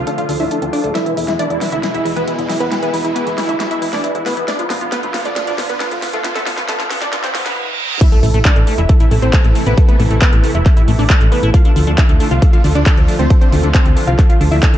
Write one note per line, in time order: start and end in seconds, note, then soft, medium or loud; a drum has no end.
0.00 0.92 D3 medium
0.00 0.92 F3 medium
0.00 0.91 A3 medium
0.00 0.91 F4 medium
0.07 0.10 D4 medium
0.07 0.14 A4 medium
0.07 closed hi-hat medium
0.18 0.23 D3 medium
0.18 0.25 F4 medium
0.18 0.25 F5 medium
0.18 closed hi-hat soft
0.29 0.37 D2 medium
0.29 0.32 D4 loud
0.29 0.36 A4 medium
0.29 open hi-hat loud
0.40 0.48 D1 medium
0.40 0.45 D4 medium
0.40 0.47 E4 medium
0.40 0.47 E5 medium
0.40 open hi-hat medium
0.51 0.59 D4 medium
0.51 0.58 A4 medium
0.51 closed hi-hat medium
0.62 0.70 D2 medium
0.62 0.65 C4 medium
0.62 0.69 A4 medium
0.62 closed hi-hat soft
0.73 0.80 D4 medium
0.73 0.81 D4 medium
0.73 0.80 D5 medium
0.73 open hi-hat loud
0.84 0.92 D1 medium
0.84 0.92 A3 loud
0.84 0.91 A4 medium
0.84 closed hi-hat medium
0.95 4.44 B2 medium
0.95 4.44 E3 medium
0.95 0.98 E3 medium
0.95 4.44 G#3 medium
0.95 1.02 E4 medium
0.95 4.45 E4 loud
0.95 1.02 E5 medium
0.95 snare soft
0.95 closed hi-hat medium
0.95 riser medium
1.06 1.14 E3 loud
1.06 1.13 E4 medium
1.06 closed hi-hat soft
1.17 1.25 E2 loud
1.17 1.24 E4 medium
1.17 1.20 E4 loud
1.17 open hi-hat loud
1.28 1.36 E2 medium
1.28 1.35 E4 medium
1.28 1.33 E4 medium
1.28 snare soft
1.28 closed hi-hat medium
1.39 1.47 E3 medium
1.39 1.47 D4 medium
1.39 1.46 D5 loud
1.39 closed hi-hat medium
1.50 1.58 E2 medium
1.50 1.53 D3 medium
1.50 1.57 E4 medium
1.50 closed hi-hat soft
1.61 1.69 E3 medium
1.61 1.69 E4 medium
1.61 snare soft
1.61 open hi-hat loud
1.72 1.80 D2 medium
1.72 1.75 D3 medium
1.72 1.80 E4 medium
1.72 1.80 E5 medium
1.72 closed hi-hat medium
1.83 1.86 E3 medium
1.83 1.91 E4 medium
1.83 snare medium
1.83 closed hi-hat medium
1.94 2.00 E2 medium
1.94 2.02 E4 medium
1.94 2.02 E5 medium
1.94 closed hi-hat soft
2.05 2.13 E2 loud
2.05 2.13 E4 medium
2.05 2.09 E4 loud
2.05 open hi-hat loud
2.16 2.24 E2 medium
2.16 2.22 E3 medium
2.16 2.24 B3 medium
2.16 2.24 B4 medium
2.16 closed hi-hat soft
2.27 2.35 E3 medium
2.27 2.35 E4 medium
2.27 closed hi-hat medium
2.38 2.46 E2 medium
2.38 2.42 D3 medium
2.38 2.46 E4 medium
2.38 closed hi-hat medium
2.50 2.57 E3 medium
2.50 2.57 E4 medium
2.50 snare medium
2.50 open hi-hat loud
2.60 2.68 E2 medium
2.60 2.68 B3 medium
2.60 2.68 B3 loud
2.60 2.68 B4 medium
2.60 closed hi-hat medium
2.71 2.75 E3 medium
2.71 2.79 E4 medium
2.71 snare medium
2.71 closed hi-hat medium
2.82 2.90 E3 loud
2.82 2.90 B3 medium
2.82 2.90 B4 medium
2.82 closed hi-hat soft
2.93 3.01 E2 medium
2.93 3.01 E4 medium
2.93 2.97 E4 loud
2.93 open hi-hat loud
3.04 3.12 E2 medium
3.04 3.12 E4 medium
3.04 3.10 E4 medium
3.04 closed hi-hat medium
3.15 3.23 E3 medium
3.15 3.23 B3 medium
3.15 3.23 B4 medium
3.15 closed hi-hat loud
3.27 3.34 E2 medium
3.27 3.30 D3 medium
3.27 3.34 E4 medium
3.27 closed hi-hat soft
3.38 3.45 E3 medium
3.38 3.45 E4 medium
3.38 snare medium
3.38 open hi-hat loud
3.49 3.56 D2 medium
3.49 3.52 D3 medium
3.49 3.56 E4 medium
3.49 3.56 E5 medium
3.49 closed hi-hat medium
3.60 3.63 E3 medium
3.60 3.67 E4 medium
3.60 snare medium
3.60 closed hi-hat medium
3.71 3.76 E2 medium
3.71 3.78 E4 medium
3.71 3.78 E5 medium
3.71 closed hi-hat medium
3.82 3.90 E2 loud
3.82 3.89 E4 medium
3.82 3.85 E4 loud
3.82 open hi-hat loud
3.93 4.01 E2 medium
3.93 3.98 E3 medium
3.93 4.00 D4 medium
3.93 4.00 D5 medium
3.93 snare medium
3.93 open hi-hat medium
4.04 4.12 E3 medium
4.04 4.11 E4 medium
4.04 closed hi-hat medium
4.15 4.23 E2 medium
4.15 4.18 D3 medium
4.15 4.22 E4 medium
4.15 closed hi-hat soft
4.26 4.34 E3 medium
4.26 4.33 B3 medium
4.26 4.33 B4 medium
4.26 snare medium
4.26 open hi-hat loud
4.37 4.45 E2 medium
4.37 4.45 B3 loud
4.37 4.44 E4 medium
4.37 closed hi-hat medium
4.48 7.54 D3 medium
4.48 7.54 F3 medium
4.48 4.51 B3 medium
4.48 7.54 B3 medium
4.48 4.55 D4 medium
4.48 7.54 F4 medium
4.48 4.55 D5 medium
4.48 snare medium
4.48 closed hi-hat loud
4.59 4.67 B3 loud
4.59 4.66 F4 medium
4.59 closed hi-hat medium
4.70 4.78 B1 medium
4.70 4.73 B3 loud
4.70 4.77 F4 medium
4.70 snare medium
4.70 open hi-hat loud
4.81 4.89 B1 medium
4.81 4.86 B3 medium
4.81 4.88 F4 medium
4.81 closed hi-hat medium
4.92 5.00 B3 medium
4.92 4.99 B3 medium
4.92 4.99 B4 loud
4.92 snare medium
4.92 closed hi-hat loud
5.03 5.11 B1 medium
5.03 5.06 A3 medium
5.03 5.10 F4 medium
5.03 closed hi-hat medium
5.14 5.22 B3 medium
5.14 5.22 F4 medium
5.14 snare medium
5.14 open hi-hat loud
5.25 5.33 A1 medium
5.25 5.28 A3 medium
5.25 5.33 D4 medium
5.25 5.33 D5 medium
5.25 closed hi-hat medium
5.36 5.39 B3 medium
5.36 5.44 F4 medium
5.36 snare medium
5.36 closed hi-hat loud
5.47 5.52 B2 medium
5.47 5.55 D4 medium
5.47 5.55 D5 medium
5.47 closed hi-hat medium
5.58 5.66 B1 loud
5.58 5.61 B3 loud
5.58 5.66 F4 medium
5.58 snare medium
5.58 open hi-hat loud
5.69 5.77 B1 medium
5.69 5.74 B3 medium
5.69 5.77 B3 medium
5.69 5.77 B4 medium
5.69 closed hi-hat medium
5.80 5.88 B3 medium
5.80 5.88 F4 medium
5.80 snare medium
5.80 closed hi-hat medium
5.91 5.99 B1 medium
5.91 5.94 A3 medium
5.91 5.99 F4 medium
5.91 closed hi-hat medium
6.02 6.10 B3 medium
6.02 6.10 F4 medium
6.02 snare medium
6.02 open hi-hat loud
6.13 6.21 B1 medium
6.13 6.21 A3 medium
6.13 6.21 F4 loud
6.13 6.21 A4 medium
6.13 closed hi-hat medium
6.24 6.28 B3 medium
6.24 6.32 F4 medium
6.24 snare medium
6.24 closed hi-hat loud
6.35 6.43 A3 medium
6.35 6.43 B3 loud
6.35 6.43 A4 loud
6.35 snare medium
6.35 closed hi-hat medium
6.46 6.54 B1 medium
6.46 6.50 B3 loud
6.46 6.54 F4 medium
6.46 snare loud
6.46 open hi-hat loud
6.57 6.65 B1 medium
6.57 6.63 B3 medium
6.57 6.65 F4 medium
6.57 snare medium
6.57 closed hi-hat medium
6.68 6.76 A3 medium
6.68 6.76 B3 medium
6.68 6.76 A4 loud
6.68 snare loud
6.68 closed hi-hat loud
6.79 6.87 B1 medium
6.79 6.83 A3 medium
6.79 6.87 F4 medium
6.79 snare medium
6.79 closed hi-hat medium
6.91 6.98 B3 medium
6.91 6.98 F4 medium
6.91 snare loud
6.91 open hi-hat loud
7.02 7.09 A1 medium
7.02 7.05 A3 medium
7.02 7.09 D4 medium
7.02 7.09 D5 medium
7.02 snare medium
7.02 closed hi-hat medium
7.13 7.16 B3 medium
7.13 7.20 F4 medium
7.13 snare loud
7.13 closed hi-hat loud
7.13 reverse cymbal medium
7.24 7.29 B2 medium
7.24 7.31 C4 medium
7.24 7.31 C5 medium
7.24 snare medium
7.24 closed hi-hat medium
7.35 7.43 B1 loud
7.35 7.42 B3 loud
7.35 7.42 F4 medium
7.35 snare loud
7.35 open hi-hat loud
7.46 7.54 B1 medium
7.46 7.53 B3 medium
7.46 7.53 B4 medium
7.46 snare medium
7.46 open hi-hat medium
8.01 11.50 C3 medium
8.01 11.50 E3 medium
8.01 8.04 A3 medium
8.01 14.78 A3 medium
8.01 11.50 E4 medium
8.01 8.08 E4 medium
8.01 8.08 E5 medium
8.01 kick loud
8.01 closed hi-hat medium
8.01 crash loud
8.01 impact medium
8.12 8.20 A3 loud
8.12 8.19 A4 medium
8.12 closed hi-hat medium
8.23 8.31 A1 loud
8.23 8.26 A3 loud
8.23 8.30 A4 medium
8.23 open hi-hat loud
8.34 8.42 A1 medium
8.34 8.39 A3 medium
8.34 8.41 A4 medium
8.34 closed hi-hat medium
8.45 8.53 A3 medium
8.45 8.52 D4 medium
8.45 8.52 D5 loud
8.45 kick loud
8.45 clap loud
8.45 closed hi-hat loud
8.56 8.64 A1 medium
8.56 8.59 G#3 medium
8.56 8.63 A4 medium
8.56 closed hi-hat medium
8.67 8.75 A3 medium
8.67 8.74 A4 medium
8.67 open hi-hat loud
8.78 8.86 E1 medium
8.78 8.81 G#3 medium
8.78 8.85 E4 medium
8.78 8.85 E5 medium
8.78 closed hi-hat medium
8.89 8.92 A3 medium
8.89 8.96 A4 medium
8.89 kick loud
8.89 closed hi-hat loud
9.00 9.05 A2 medium
9.00 9.08 E4 medium
9.00 9.08 E5 medium
9.00 closed hi-hat medium
9.11 9.19 A1 loud
9.11 9.14 A3 loud
9.11 9.19 A4 medium
9.11 open hi-hat loud
9.22 9.30 A1 medium
9.22 9.27 A3 medium
9.22 9.30 C4 medium
9.22 9.30 C5 medium
9.22 closed hi-hat medium
9.33 9.41 A3 medium
9.33 kick loud
9.33 clap loud
9.33 closed hi-hat loud
9.44 9.52 A1 medium
9.44 9.47 G#3 medium
9.44 9.52 A4 medium
9.44 closed hi-hat medium
9.55 9.63 A3 medium
9.55 9.63 A4 medium
9.55 open hi-hat loud
9.66 9.74 A1 medium
9.66 9.74 B3 medium
9.66 9.74 E4 loud
9.66 9.74 B4 medium
9.66 closed hi-hat medium
9.77 9.81 A3 medium
9.77 9.85 A4 medium
9.77 kick loud
9.77 closed hi-hat loud
9.88 9.96 A3 loud
9.88 9.96 B3 medium
9.88 9.96 B4 medium
9.88 closed hi-hat medium
10.00 10.07 A1 medium
10.00 10.03 A3 loud
10.00 10.07 A4 medium
10.00 open hi-hat loud
10.11 10.18 A1 medium
10.11 10.16 A3 medium
10.11 10.18 A4 medium
10.11 closed hi-hat medium
10.22 10.29 A3 medium
10.22 10.29 B3 medium
10.22 10.29 B4 medium
10.22 kick loud
10.22 clap loud
10.22 closed hi-hat loud
10.33 10.40 A1 medium
10.33 10.36 G#3 medium
10.33 10.40 A4 medium
10.33 closed hi-hat medium
10.44 10.51 A3 medium
10.44 10.51 A4 medium
10.44 open hi-hat loud
10.55 10.62 E1 medium
10.55 10.58 G#3 medium
10.55 10.62 E4 medium
10.55 10.62 E5 medium
10.55 closed hi-hat medium
10.66 10.69 A3 medium
10.66 10.73 A4 medium
10.66 kick loud
10.66 clap soft
10.66 closed hi-hat loud
10.77 10.82 A2 medium
10.77 10.84 E4 medium
10.77 10.84 E5 medium
10.77 closed hi-hat medium
10.88 10.96 A1 loud
10.88 10.91 A3 loud
10.88 10.95 A4 medium
10.88 open hi-hat loud
10.99 11.07 A1 medium
10.99 11.04 A3 medium
10.99 11.06 D4 medium
10.99 11.06 D5 medium
10.99 open hi-hat medium
11.10 11.18 A3 medium
11.10 kick loud
11.10 clap loud
11.10 closed hi-hat medium
11.21 11.29 A1 medium
11.21 11.24 G#3 medium
11.21 11.28 A4 medium
11.21 closed hi-hat medium
11.32 11.40 A3 medium
11.32 11.39 B3 medium
11.32 11.39 B4 medium
11.32 open hi-hat loud
11.43 11.51 A1 medium
11.43 11.51 E4 loud
11.43 11.50 A4 medium
11.43 closed hi-hat medium
11.54 14.78 D3 medium
11.54 14.78 F3 medium
11.54 11.57 D4 medium
11.54 11.61 F4 medium
11.54 14.78 F4 medium
11.54 11.61 F5 loud
11.54 kick loud
11.54 closed hi-hat medium
11.65 11.73 D4 loud
11.65 11.72 A4 medium
11.65 closed hi-hat medium
11.76 11.84 D2 medium
11.76 11.79 D4 loud
11.76 11.83 A4 medium
11.76 open hi-hat loud
11.87 11.95 D2 medium
11.87 11.92 D4 medium
11.87 11.94 A4 medium
11.87 closed hi-hat soft
11.98 12.06 D4 medium
11.98 12.05 E4 medium
11.98 12.05 E5 medium
11.98 kick loud
11.98 clap loud
11.98 closed hi-hat medium
12.09 12.17 D2 medium
12.09 12.12 C4 medium
12.09 12.16 A4 medium
12.09 closed hi-hat soft
12.20 12.28 D4 medium
12.20 12.27 A4 medium
12.20 open hi-hat loud
12.31 12.39 C2 medium
12.31 12.34 C4 medium
12.31 12.38 F4 medium
12.31 12.38 F5 medium
12.31 closed hi-hat medium
12.42 12.45 D4 medium
12.42 12.49 A4 medium
12.42 kick loud
12.42 closed hi-hat medium
12.53 12.58 D3 medium
12.53 12.60 F4 medium
12.53 12.60 F5 medium
12.53 closed hi-hat medium
12.64 12.72 D2 loud
12.64 12.67 D4 loud
12.64 12.71 A4 medium
12.64 open hi-hat loud
12.75 12.83 D2 medium
12.75 12.82 D4 medium
12.75 12.80 D4 medium
12.75 12.83 D5 medium
12.75 closed hi-hat medium
12.86 12.94 D4 medium
12.86 12.93 A4 medium
12.86 kick loud
12.86 clap loud
12.86 closed hi-hat medium
12.97 13.05 D2 medium
12.97 13.00 C4 medium
12.97 13.04 A4 medium
12.97 closed hi-hat soft
13.08 13.16 D4 medium
13.08 13.15 A4 medium
13.08 open hi-hat loud
13.19 13.27 D2 medium
13.19 13.27 A3 loud
13.19 13.27 C4 medium
13.19 13.27 C5 medium
13.19 closed hi-hat medium
13.30 13.33 D4 medium
13.30 13.38 A4 medium
13.30 kick loud
13.30 closed hi-hat medium
13.41 13.49 C4 medium
13.41 13.49 D4 loud
13.41 13.49 C5 medium
13.41 closed hi-hat soft
13.52 13.60 D2 medium
13.52 13.56 D4 loud
13.52 13.60 A4 medium
13.52 open hi-hat loud
13.63 13.71 D2 medium
13.63 13.69 D4 medium
13.63 13.71 A4 medium
13.63 closed hi-hat medium
13.74 13.82 C4 medium
13.74 13.82 D4 medium
13.74 13.82 C5 loud
13.74 kick loud
13.74 clap loud
13.74 closed hi-hat loud
13.85 13.93 D2 medium
13.85 13.89 C4 medium
13.85 13.93 A4 medium
13.85 closed hi-hat medium
13.96 14.04 D4 medium
13.96 14.04 A4 medium
13.96 open hi-hat loud
14.07 14.15 C2 medium
14.07 14.11 C4 medium
14.07 14.15 F4 medium
14.07 14.15 F5 medium
14.07 closed hi-hat medium
14.19 14.22 D4 medium
14.19 14.26 A4 medium
14.19 kick loud
14.19 clap soft
14.19 closed hi-hat medium
14.29 14.35 D3 medium
14.29 14.37 F4 medium
14.29 14.37 F5 medium
14.29 closed hi-hat medium
14.41 14.48 D2 loud
14.41 14.44 D4 loud
14.41 14.48 A4 medium
14.41 open hi-hat loud
14.52 14.59 D2 medium
14.52 14.57 D4 medium
14.52 14.59 E4 medium
14.52 14.59 E5 loud
14.52 open hi-hat medium
14.63 14.70 D4 medium
14.63 14.70 A4 medium
14.63 kick loud
14.63 clap loud
14.63 closed hi-hat medium
14.74 14.78 D2 medium
14.74 14.77 C4 medium
14.74 14.78 A4 medium
14.74 closed hi-hat medium